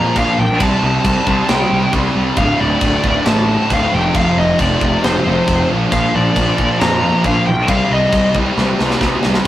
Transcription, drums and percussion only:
0.16 kick medium
0.16 crash medium
0.60 kick loud
0.60 crash medium
1.05 kick loud
1.05 crash medium
1.27 kick medium
1.49 snare loud
1.49 crash medium
1.93 kick medium
1.93 crash medium
2.36 kick loud
2.36 crash medium
2.81 kick loud
2.81 crash medium
3.04 kick loud
3.26 snare loud
3.26 crash medium
3.70 kick medium
3.70 crash medium
4.14 kick loud
4.14 crash medium
4.59 kick loud
4.59 crash medium
4.81 kick medium
5.04 snare loud
5.04 crash medium
5.48 kick medium
5.48 crash medium
5.92 kick loud
5.92 crash medium
6.36 kick loud
6.36 crash medium
6.58 kick medium
6.81 snare loud
6.81 crash medium
7.24 kick medium
7.24 crash medium
7.68 kick loud
7.68 crash medium
8.13 kick loud
8.13 crash medium
8.35 kick medium
8.58 snare medium
8.79 snare medium
8.90 snare medium
9.01 kick medium
9.01 snare loud
9.23 snare loud
9.34 snare loud

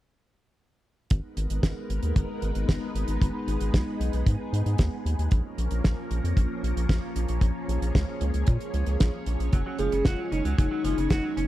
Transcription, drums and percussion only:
1.10 kick loud
1.10 closed hi-hat medium
1.37 closed hi-hat medium
1.50 closed hi-hat medium
1.63 kick loud
1.63 snare loud
1.63 closed hi-hat medium
1.90 closed hi-hat medium
2.03 closed hi-hat medium
2.16 kick loud
2.16 closed hi-hat medium
2.42 closed hi-hat medium
2.55 closed hi-hat medium
2.69 kick loud
2.69 snare loud
2.69 closed hi-hat medium
2.95 closed hi-hat medium
3.08 closed hi-hat medium
3.22 kick loud
3.22 closed hi-hat medium
3.48 closed hi-hat medium
3.60 closed hi-hat medium
3.74 kick loud
3.74 snare loud
3.74 closed hi-hat medium
4.01 closed hi-hat medium
4.13 closed hi-hat medium
4.26 kick loud
4.26 closed hi-hat medium
4.54 closed hi-hat medium
4.66 closed hi-hat medium
4.78 kick loud
4.78 snare loud
4.78 closed hi-hat medium
5.06 closed hi-hat medium
5.19 closed hi-hat medium
5.31 kick loud
5.31 closed hi-hat medium
5.58 closed hi-hat medium
5.71 closed hi-hat medium
5.84 kick loud
5.84 snare loud
5.84 closed hi-hat medium
6.11 closed hi-hat medium
6.25 closed hi-hat medium
6.37 kick loud
6.37 closed hi-hat medium
6.64 closed hi-hat medium
6.77 closed hi-hat medium
6.89 kick loud
6.89 snare loud
6.89 closed hi-hat medium
7.16 closed hi-hat medium
7.28 closed hi-hat medium
7.41 kick loud
7.41 closed hi-hat medium
7.69 closed hi-hat medium
7.82 closed hi-hat medium
7.95 kick loud
7.95 snare loud
7.95 closed hi-hat medium
8.21 closed hi-hat medium
8.34 closed hi-hat medium
8.47 kick loud
8.47 closed hi-hat medium
8.60 closed hi-hat soft
8.74 closed hi-hat medium
8.86 closed hi-hat medium
9.00 kick loud
9.00 snare loud
9.00 closed hi-hat medium
9.26 closed hi-hat medium
9.40 closed hi-hat medium
9.53 kick loud
9.53 closed hi-hat medium
9.78 closed hi-hat medium
9.92 closed hi-hat medium
10.05 kick loud
10.05 snare loud
10.05 closed hi-hat medium
10.32 closed hi-hat medium
10.45 closed hi-hat medium
10.58 kick loud
10.58 closed hi-hat medium
10.85 closed hi-hat medium
10.98 closed hi-hat medium
11.10 kick loud
11.10 snare loud
11.10 closed hi-hat medium
11.37 closed hi-hat medium

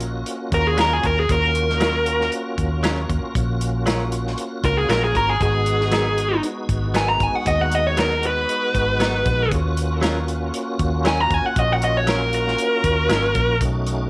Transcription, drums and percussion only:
0.00 closed hi-hat medium
0.26 closed hi-hat medium
0.52 kick medium
0.52 closed hi-hat medium
0.78 snare medium
0.78 closed hi-hat medium
1.03 kick medium
1.03 closed hi-hat soft
1.29 kick loud
1.29 closed hi-hat medium
1.55 closed hi-hat medium
1.70 snare soft
1.81 snare loud
1.81 closed hi-hat medium
2.06 closed hi-hat medium
2.21 snare soft
2.32 closed hi-hat medium
2.58 kick medium
2.58 closed hi-hat medium
2.84 snare loud
2.84 closed hi-hat medium
3.10 kick medium
3.10 closed hi-hat medium
3.35 kick loud
3.35 closed hi-hat medium
3.61 closed hi-hat medium
3.87 snare loud
3.87 closed hi-hat medium
4.12 closed hi-hat medium
4.27 snare soft
4.38 closed hi-hat medium
4.64 kick medium
4.64 closed hi-hat medium
4.90 snare medium
4.90 closed hi-hat medium
5.15 kick medium
5.15 closed hi-hat soft
5.41 kick medium
5.41 closed hi-hat medium
5.66 closed hi-hat medium
5.81 snare soft
5.92 snare loud
5.92 closed hi-hat medium
6.18 closed hi-hat medium
6.43 closed hi-hat medium
6.69 kick medium
6.69 closed hi-hat medium
6.95 snare medium
6.95 closed hi-hat medium
7.20 kick medium
7.20 closed hi-hat medium
7.46 kick medium
7.46 closed hi-hat medium
7.72 closed hi-hat medium
7.97 snare loud
7.97 closed hi-hat medium
8.23 closed hi-hat medium
8.49 closed hi-hat medium
8.75 kick medium
8.75 closed hi-hat medium
9.00 snare medium
9.00 closed hi-hat medium
9.26 kick loud
9.26 closed hi-hat soft
9.51 kick loud
9.51 closed hi-hat medium
9.77 closed hi-hat medium
10.03 snare loud
10.03 closed hi-hat medium
10.28 closed hi-hat medium
10.54 closed hi-hat medium
10.79 kick medium
10.79 closed hi-hat medium
11.05 snare loud
11.05 closed hi-hat medium
11.31 kick loud
11.31 closed hi-hat soft
11.56 kick loud
11.56 closed hi-hat medium
11.82 closed hi-hat medium
12.07 snare medium
12.07 closed hi-hat medium
12.33 closed hi-hat medium
12.48 snare soft
12.58 closed hi-hat medium
12.84 kick medium
12.84 closed hi-hat medium
13.10 snare medium
13.10 closed hi-hat medium
13.35 kick medium
13.35 closed hi-hat medium
13.61 kick medium
13.61 closed hi-hat medium
13.87 closed hi-hat medium

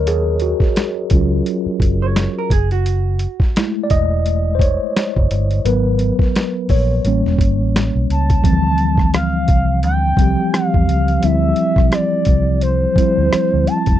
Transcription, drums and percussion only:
0.07 closed hi-hat medium
0.40 closed hi-hat soft
0.60 kick medium
0.60 snare soft
0.76 snare loud
0.76 closed hi-hat medium
1.10 kick loud
1.10 closed hi-hat medium
1.46 closed hi-hat medium
1.80 kick medium
1.80 closed hi-hat medium
2.16 snare medium
2.16 closed hi-hat medium
2.50 kick medium
2.50 closed hi-hat medium
2.71 closed hi-hat soft
2.86 closed hi-hat medium
3.19 closed hi-hat medium
3.40 kick medium
3.40 snare soft
3.56 snare loud
3.56 closed hi-hat medium
3.90 kick medium
3.90 closed hi-hat medium
4.26 closed hi-hat medium
4.59 kick medium
4.59 closed hi-hat medium
4.97 snare loud
4.97 closed hi-hat medium
5.16 kick medium
5.31 closed hi-hat medium
5.51 closed hi-hat soft
5.66 closed hi-hat medium
5.99 closed hi-hat medium
6.19 kick medium
6.19 snare soft
6.36 snare loud
6.36 closed hi-hat medium
6.69 kick medium
6.69 open hi-hat medium
7.05 closed hi-hat medium
7.26 snare soft
7.38 kick medium
7.38 closed hi-hat medium
7.76 snare loud
7.76 closed hi-hat medium
8.10 closed hi-hat medium
8.30 kick medium
8.30 closed hi-hat soft
8.44 kick loud
8.44 closed hi-hat medium
8.78 closed hi-hat medium
8.98 kick medium
8.98 cross-stick soft
9.14 cross-stick loud
9.14 closed hi-hat medium
9.48 kick loud
9.48 closed hi-hat medium
9.83 closed hi-hat medium
10.17 kick medium
10.17 closed hi-hat medium
10.54 cross-stick loud
10.54 closed hi-hat medium
10.74 kick medium
10.89 closed hi-hat medium
11.08 closed hi-hat soft
11.23 closed hi-hat medium
11.56 closed hi-hat soft
11.76 kick loud
11.76 cross-stick soft
11.92 cross-stick loud
11.92 closed hi-hat medium
12.25 kick medium
12.25 closed hi-hat medium
12.61 closed hi-hat medium
12.96 kick medium
12.96 closed hi-hat medium
13.33 cross-stick loud
13.33 closed hi-hat medium
13.67 closed hi-hat medium
13.86 kick medium
13.86 closed hi-hat medium

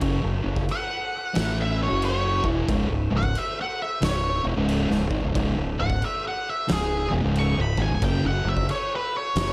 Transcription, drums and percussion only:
0.01 kick loud
0.01 crash medium
0.56 kick medium
0.69 crash medium
1.35 snare loud
1.35 crash medium
2.02 crash medium
2.44 kick medium
2.69 kick loud
2.69 crash medium
3.23 kick medium
3.35 crash medium
4.02 snare loud
4.02 crash medium
4.69 crash medium
4.91 snare soft
5.11 kick medium
5.35 kick loud
5.35 crash medium
5.90 kick medium
6.02 crash medium
6.68 snare loud
6.68 crash medium
7.36 crash medium
7.78 kick medium
8.02 kick loud
8.02 crash medium
8.57 kick medium
8.69 crash medium
9.36 snare loud
9.36 crash medium

